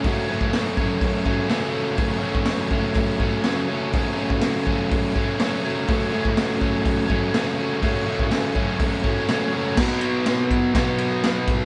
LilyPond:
<<
  \new Staff \with { instrumentName = "Overdriven electric guitar" } { \time 4/4 \key fis \minor \tempo 4 = 123 <fis, cis fis a cis'>8 <fis, cis fis a cis'>4 <fis a cis'>4 <fis a cis'>8 <cis fis a cis'>8 <fis a cis'>8 | <fis, cis fis a cis'>8 <fis, cis fis a cis'>4 <fis a cis'>4 <fis a cis'>8 <cis fis a cis'>8 <fis a cis'>8 | <fis, cis fis a cis'>8 <fis, cis fis a cis'>4 <fis a cis'>4 <fis a cis'>8 <cis fis a cis'>8 <fis a cis'>8 | <fis, cis fis a cis'>8 <fis, cis fis a cis'>4 <fis a cis'>4 <fis a cis'>8 <cis fis a cis'>8 <fis a cis'>8 |
<fis, cis fis a cis'>8 <fis, cis fis a cis'>4 <fis a cis'>4 <fis a cis'>8 <cis fis a cis'>8 <fis a cis'>8 | <b, fis b>2 <b, fis b>2 | }
  \new DrumStaff \with { instrumentName = "Drums" } \drummode { \time 4/4 <hho bd>8. bd16 <hho sn>8 bd8 <hho bd>8 bd8 <hho sn>4 | <hho bd>8. bd16 <hho sn>8 bd8 <hho bd>8 bd8 <hho sn>4 | <hho bd>8. bd16 <hho sn>8 bd8 <hho bd>8 bd8 <hho sn>4 | <hho bd>8. bd16 <hho sn>8 bd8 <hho bd>8 bd8 <hho sn>4 |
<hho bd>8. bd16 <hho sn>8 bd8 <hho bd>8 bd8 <hho sn>4 | <cymc bd sn>8 cymr8 <cymr sn>8 <bd cymr>8 <bd cymr sn>8 cymr8 <cymr sn>8 <bd cymr>8 | }
>>